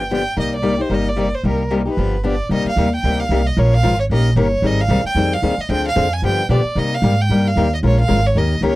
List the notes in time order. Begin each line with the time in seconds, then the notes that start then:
Already playing: G1
0.11 D3 F3 B3 D4 G4 G5
0.36 C2 C3 G3 A#3 D#4 G4 D#5
0.56 D5
0.62 C3 G3 A#3 D#4 G4
0.77 D#4 G4
0.81 C5
0.89 G1 C3 G3 A#3 D#4 G4
0.94 D#5
1.08 D5
1.16 C3 G3 A#3 D#4 G4
1.35 C5
1.43 C2 C3 G3 A#3 D#4 G4 A#4
1.71 C3 G3 A#3 D#4 G4
1.85 A#3 D#4 G4 B4
1.97 G1 D3 F3 B3 D4 G4
2.23 D3 F3 B3 D4 G4 D5
2.49 C2 C3 G3 A#3 D#4 G4 D#5
2.65 F5, muted upright bass stroke
2.76 D#2 C3 G3 A#3 D#4 G4
2.95 G5
3.03 D2 C3 G3 A#3 D#4 G4
3.20 F5
3.29 C2 C3 G3 A#3 D#4 G4
3.47 D#5
3.57 A#1 F3 G#3 C#4 F4 A#4 C#5
3.74 F5
3.83 G#1 F3 G#3 C#4 F4 A#4
4.00 C#5
4.10 A#1 D#3 A#3 C#4 G4 A#4 D#5
4.36 G1 D#3 A#3 C#4 G4 A#4 C#5
4.62 G#1 D#3 G3 C4 D#4 G#4 D#5
4.80 F5
4.88 C2 D#3 G3 C4 D#4 G#4
5.04 G5, muted upright bass stroke
5.15 F2 D#3 G3 C4 D#4 G#4
5.33 F5
5.42 D#2 D#3 G3 C4 D#4 G#4
5.58 D#5, muted upright bass stroke
5.69 D2 D3 F3 C4 D4 G#4 G5
5.88 F5
5.96 F2 D3 F3 C4 D4 G#4
6.13 G#5
6.22 G2 D3 F3 B3 D4 G4 G5
6.49 B2 D3 F3 B3 D4 G4 D5
6.64 muted upright bass stroke
6.75 C3 G3 A#3 D#4 G4 D#5
6.94 F5
7.02 G#2 C3 G3 A#3 D#4 G4
7.21 G5
7.29 G2 C3 G3 A#3 D#4 G4
7.47 F5
7.56 D#2 C3 G3 A#3 D#4 G4
7.74 D#5
7.83 A#1 F3 G#3 C#4 F4 A#4 C#5
8.00 F5
8.08 G#1 F3 G#3 C#4 F4 A#4
8.27 C#5
8.35 D#2 D#3 A#3 C#4 G4 A#4 D#5
8.61 C#2 D#3 A#3 C#4 G4 A#4 C#5